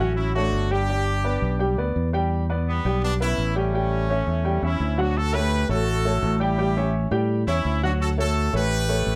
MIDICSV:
0, 0, Header, 1, 4, 480
1, 0, Start_track
1, 0, Tempo, 355872
1, 1199, Time_signature, 4, 2, 24, 8
1, 12348, End_track
2, 0, Start_track
2, 0, Title_t, "Grand piano"
2, 0, Program_c, 0, 0
2, 0, Note_on_c, 0, 54, 81
2, 6, Note_on_c, 0, 66, 77
2, 8, Note_on_c, 0, 78, 82
2, 392, Note_off_c, 0, 54, 0
2, 397, Note_off_c, 0, 66, 0
2, 398, Note_off_c, 0, 78, 0
2, 479, Note_on_c, 0, 57, 79
2, 485, Note_on_c, 0, 69, 70
2, 492, Note_on_c, 0, 73, 72
2, 873, Note_off_c, 0, 57, 0
2, 877, Note_off_c, 0, 69, 0
2, 880, Note_off_c, 0, 73, 0
2, 955, Note_on_c, 0, 55, 86
2, 960, Note_on_c, 0, 67, 89
2, 963, Note_on_c, 0, 79, 85
2, 1154, Note_off_c, 0, 55, 0
2, 1157, Note_off_c, 0, 67, 0
2, 1158, Note_off_c, 0, 79, 0
2, 1207, Note_on_c, 0, 55, 80
2, 1208, Note_on_c, 0, 67, 76
2, 1213, Note_on_c, 0, 79, 76
2, 1598, Note_off_c, 0, 55, 0
2, 1598, Note_off_c, 0, 67, 0
2, 1601, Note_off_c, 0, 79, 0
2, 1675, Note_on_c, 0, 59, 71
2, 1680, Note_on_c, 0, 74, 73
2, 1684, Note_on_c, 0, 71, 69
2, 2071, Note_off_c, 0, 59, 0
2, 2075, Note_off_c, 0, 74, 0
2, 2077, Note_off_c, 0, 71, 0
2, 2148, Note_on_c, 0, 55, 79
2, 2160, Note_on_c, 0, 79, 82
2, 2161, Note_on_c, 0, 67, 80
2, 2350, Note_off_c, 0, 55, 0
2, 2358, Note_off_c, 0, 67, 0
2, 2358, Note_off_c, 0, 79, 0
2, 2403, Note_on_c, 0, 59, 76
2, 2405, Note_on_c, 0, 71, 72
2, 2407, Note_on_c, 0, 74, 75
2, 2796, Note_off_c, 0, 59, 0
2, 2798, Note_off_c, 0, 71, 0
2, 2799, Note_off_c, 0, 74, 0
2, 2876, Note_on_c, 0, 55, 84
2, 2884, Note_on_c, 0, 67, 88
2, 2891, Note_on_c, 0, 79, 89
2, 3273, Note_off_c, 0, 55, 0
2, 3278, Note_off_c, 0, 67, 0
2, 3281, Note_off_c, 0, 79, 0
2, 3367, Note_on_c, 0, 59, 78
2, 3368, Note_on_c, 0, 71, 80
2, 3372, Note_on_c, 0, 74, 75
2, 3760, Note_off_c, 0, 59, 0
2, 3760, Note_off_c, 0, 71, 0
2, 3762, Note_off_c, 0, 74, 0
2, 3849, Note_on_c, 0, 55, 78
2, 3855, Note_on_c, 0, 67, 83
2, 3855, Note_on_c, 0, 79, 82
2, 4240, Note_off_c, 0, 55, 0
2, 4244, Note_off_c, 0, 79, 0
2, 4245, Note_off_c, 0, 67, 0
2, 4318, Note_on_c, 0, 59, 74
2, 4325, Note_on_c, 0, 71, 78
2, 4326, Note_on_c, 0, 76, 76
2, 4714, Note_off_c, 0, 59, 0
2, 4719, Note_off_c, 0, 71, 0
2, 4719, Note_off_c, 0, 76, 0
2, 4799, Note_on_c, 0, 55, 84
2, 4804, Note_on_c, 0, 67, 87
2, 4804, Note_on_c, 0, 79, 84
2, 4998, Note_off_c, 0, 55, 0
2, 5001, Note_off_c, 0, 67, 0
2, 5001, Note_off_c, 0, 79, 0
2, 5045, Note_on_c, 0, 55, 73
2, 5051, Note_on_c, 0, 67, 79
2, 5058, Note_on_c, 0, 79, 79
2, 5439, Note_off_c, 0, 55, 0
2, 5442, Note_off_c, 0, 67, 0
2, 5446, Note_off_c, 0, 79, 0
2, 5531, Note_on_c, 0, 61, 73
2, 5532, Note_on_c, 0, 73, 71
2, 5542, Note_on_c, 0, 76, 72
2, 5922, Note_off_c, 0, 61, 0
2, 5923, Note_off_c, 0, 73, 0
2, 5929, Note_off_c, 0, 76, 0
2, 5997, Note_on_c, 0, 55, 81
2, 6004, Note_on_c, 0, 67, 76
2, 6006, Note_on_c, 0, 79, 79
2, 6197, Note_off_c, 0, 55, 0
2, 6201, Note_off_c, 0, 67, 0
2, 6202, Note_off_c, 0, 79, 0
2, 6243, Note_on_c, 0, 61, 76
2, 6243, Note_on_c, 0, 73, 72
2, 6248, Note_on_c, 0, 76, 78
2, 6637, Note_off_c, 0, 61, 0
2, 6637, Note_off_c, 0, 73, 0
2, 6640, Note_off_c, 0, 76, 0
2, 6714, Note_on_c, 0, 54, 90
2, 6721, Note_on_c, 0, 66, 88
2, 6728, Note_on_c, 0, 78, 84
2, 6915, Note_off_c, 0, 54, 0
2, 6919, Note_off_c, 0, 66, 0
2, 6924, Note_off_c, 0, 78, 0
2, 7187, Note_on_c, 0, 57, 82
2, 7194, Note_on_c, 0, 69, 75
2, 7197, Note_on_c, 0, 73, 79
2, 7588, Note_off_c, 0, 57, 0
2, 7592, Note_off_c, 0, 69, 0
2, 7593, Note_off_c, 0, 73, 0
2, 7673, Note_on_c, 0, 57, 78
2, 7682, Note_on_c, 0, 69, 74
2, 7682, Note_on_c, 0, 73, 76
2, 8071, Note_off_c, 0, 57, 0
2, 8076, Note_off_c, 0, 69, 0
2, 8076, Note_off_c, 0, 73, 0
2, 8163, Note_on_c, 0, 57, 82
2, 8164, Note_on_c, 0, 69, 80
2, 8169, Note_on_c, 0, 73, 83
2, 8556, Note_off_c, 0, 57, 0
2, 8557, Note_off_c, 0, 69, 0
2, 8560, Note_off_c, 0, 73, 0
2, 8632, Note_on_c, 0, 55, 92
2, 8632, Note_on_c, 0, 67, 90
2, 8646, Note_on_c, 0, 79, 92
2, 8833, Note_off_c, 0, 55, 0
2, 8833, Note_off_c, 0, 67, 0
2, 8841, Note_off_c, 0, 79, 0
2, 8879, Note_on_c, 0, 55, 88
2, 8886, Note_on_c, 0, 79, 86
2, 8889, Note_on_c, 0, 67, 85
2, 9077, Note_off_c, 0, 55, 0
2, 9081, Note_off_c, 0, 79, 0
2, 9083, Note_off_c, 0, 67, 0
2, 9130, Note_on_c, 0, 61, 78
2, 9137, Note_on_c, 0, 73, 76
2, 9140, Note_on_c, 0, 76, 83
2, 9520, Note_off_c, 0, 61, 0
2, 9524, Note_off_c, 0, 73, 0
2, 9526, Note_off_c, 0, 76, 0
2, 9597, Note_on_c, 0, 55, 88
2, 9598, Note_on_c, 0, 67, 90
2, 9601, Note_on_c, 0, 79, 88
2, 9992, Note_off_c, 0, 55, 0
2, 9993, Note_off_c, 0, 67, 0
2, 9994, Note_off_c, 0, 79, 0
2, 10087, Note_on_c, 0, 73, 84
2, 10088, Note_on_c, 0, 61, 82
2, 10092, Note_on_c, 0, 76, 78
2, 10477, Note_off_c, 0, 73, 0
2, 10478, Note_off_c, 0, 61, 0
2, 10480, Note_off_c, 0, 76, 0
2, 10565, Note_on_c, 0, 54, 94
2, 10567, Note_on_c, 0, 78, 97
2, 10568, Note_on_c, 0, 66, 93
2, 10956, Note_off_c, 0, 54, 0
2, 10957, Note_off_c, 0, 66, 0
2, 10957, Note_off_c, 0, 78, 0
2, 11029, Note_on_c, 0, 57, 75
2, 11035, Note_on_c, 0, 73, 81
2, 11036, Note_on_c, 0, 69, 79
2, 11426, Note_off_c, 0, 57, 0
2, 11429, Note_off_c, 0, 73, 0
2, 11430, Note_off_c, 0, 69, 0
2, 11506, Note_on_c, 0, 57, 76
2, 11506, Note_on_c, 0, 69, 80
2, 11515, Note_on_c, 0, 73, 81
2, 11904, Note_off_c, 0, 57, 0
2, 11904, Note_off_c, 0, 69, 0
2, 11909, Note_off_c, 0, 73, 0
2, 11991, Note_on_c, 0, 69, 81
2, 11991, Note_on_c, 0, 73, 81
2, 11992, Note_on_c, 0, 57, 84
2, 12348, Note_off_c, 0, 57, 0
2, 12348, Note_off_c, 0, 69, 0
2, 12348, Note_off_c, 0, 73, 0
2, 12348, End_track
3, 0, Start_track
3, 0, Title_t, "Horn section"
3, 0, Program_c, 1, 61
3, 0, Note_on_c, 1, 57, 58
3, 0, Note_on_c, 1, 61, 79
3, 199, Note_off_c, 1, 61, 0
3, 203, Note_off_c, 1, 57, 0
3, 213, Note_on_c, 1, 64, 90
3, 235, Note_on_c, 1, 61, 68
3, 448, Note_off_c, 1, 64, 0
3, 456, Note_on_c, 1, 66, 101
3, 460, Note_off_c, 1, 61, 0
3, 486, Note_on_c, 1, 62, 82
3, 913, Note_off_c, 1, 66, 0
3, 930, Note_off_c, 1, 62, 0
3, 941, Note_on_c, 1, 67, 106
3, 972, Note_on_c, 1, 62, 79
3, 2392, Note_off_c, 1, 67, 0
3, 2408, Note_off_c, 1, 62, 0
3, 3604, Note_on_c, 1, 59, 82
3, 3617, Note_on_c, 1, 55, 64
3, 4050, Note_off_c, 1, 59, 0
3, 4058, Note_off_c, 1, 55, 0
3, 4086, Note_on_c, 1, 62, 100
3, 4091, Note_on_c, 1, 59, 76
3, 4193, Note_off_c, 1, 62, 0
3, 4198, Note_off_c, 1, 59, 0
3, 4323, Note_on_c, 1, 64, 106
3, 4330, Note_on_c, 1, 61, 81
3, 4771, Note_off_c, 1, 64, 0
3, 4774, Note_off_c, 1, 61, 0
3, 4804, Note_on_c, 1, 61, 87
3, 4813, Note_on_c, 1, 57, 71
3, 6191, Note_off_c, 1, 61, 0
3, 6195, Note_off_c, 1, 57, 0
3, 6246, Note_on_c, 1, 64, 90
3, 6261, Note_on_c, 1, 61, 71
3, 6692, Note_off_c, 1, 64, 0
3, 6700, Note_off_c, 1, 61, 0
3, 6728, Note_on_c, 1, 66, 82
3, 6744, Note_on_c, 1, 62, 73
3, 6958, Note_on_c, 1, 69, 110
3, 6959, Note_off_c, 1, 66, 0
3, 6974, Note_off_c, 1, 62, 0
3, 6975, Note_on_c, 1, 66, 84
3, 7191, Note_on_c, 1, 71, 107
3, 7201, Note_off_c, 1, 69, 0
3, 7210, Note_off_c, 1, 66, 0
3, 7219, Note_on_c, 1, 67, 86
3, 7665, Note_on_c, 1, 69, 112
3, 7677, Note_off_c, 1, 71, 0
3, 7691, Note_off_c, 1, 67, 0
3, 7693, Note_on_c, 1, 66, 91
3, 8579, Note_off_c, 1, 69, 0
3, 8593, Note_off_c, 1, 66, 0
3, 8645, Note_on_c, 1, 67, 85
3, 8669, Note_on_c, 1, 64, 73
3, 9363, Note_off_c, 1, 67, 0
3, 9375, Note_off_c, 1, 64, 0
3, 10069, Note_on_c, 1, 64, 93
3, 10082, Note_on_c, 1, 61, 68
3, 10520, Note_off_c, 1, 64, 0
3, 10527, Note_off_c, 1, 61, 0
3, 10559, Note_on_c, 1, 66, 84
3, 10571, Note_on_c, 1, 62, 65
3, 10667, Note_off_c, 1, 66, 0
3, 10676, Note_off_c, 1, 62, 0
3, 10788, Note_on_c, 1, 69, 94
3, 10799, Note_on_c, 1, 66, 76
3, 10898, Note_off_c, 1, 69, 0
3, 10907, Note_off_c, 1, 66, 0
3, 11041, Note_on_c, 1, 69, 102
3, 11050, Note_on_c, 1, 66, 76
3, 11486, Note_off_c, 1, 69, 0
3, 11491, Note_off_c, 1, 66, 0
3, 11527, Note_on_c, 1, 71, 119
3, 11532, Note_on_c, 1, 67, 90
3, 12348, Note_off_c, 1, 67, 0
3, 12348, Note_off_c, 1, 71, 0
3, 12348, End_track
4, 0, Start_track
4, 0, Title_t, "Fingered electric bass"
4, 0, Program_c, 2, 33
4, 0, Note_on_c, 2, 33, 90
4, 667, Note_off_c, 2, 33, 0
4, 708, Note_on_c, 2, 31, 86
4, 1837, Note_off_c, 2, 31, 0
4, 1915, Note_on_c, 2, 35, 94
4, 2365, Note_off_c, 2, 35, 0
4, 2390, Note_on_c, 2, 38, 75
4, 2619, Note_off_c, 2, 38, 0
4, 2642, Note_on_c, 2, 40, 86
4, 3765, Note_off_c, 2, 40, 0
4, 3842, Note_on_c, 2, 35, 90
4, 4513, Note_off_c, 2, 35, 0
4, 4560, Note_on_c, 2, 33, 91
4, 5685, Note_off_c, 2, 33, 0
4, 5755, Note_on_c, 2, 40, 88
4, 6206, Note_off_c, 2, 40, 0
4, 6237, Note_on_c, 2, 40, 72
4, 6464, Note_off_c, 2, 40, 0
4, 6477, Note_on_c, 2, 38, 85
4, 7602, Note_off_c, 2, 38, 0
4, 7675, Note_on_c, 2, 33, 98
4, 8348, Note_off_c, 2, 33, 0
4, 8396, Note_on_c, 2, 33, 99
4, 9520, Note_off_c, 2, 33, 0
4, 9592, Note_on_c, 2, 45, 101
4, 10042, Note_off_c, 2, 45, 0
4, 10075, Note_on_c, 2, 40, 77
4, 10301, Note_off_c, 2, 40, 0
4, 10318, Note_on_c, 2, 38, 89
4, 11439, Note_off_c, 2, 38, 0
4, 11510, Note_on_c, 2, 33, 98
4, 12182, Note_off_c, 2, 33, 0
4, 12228, Note_on_c, 2, 33, 93
4, 12348, Note_off_c, 2, 33, 0
4, 12348, End_track
0, 0, End_of_file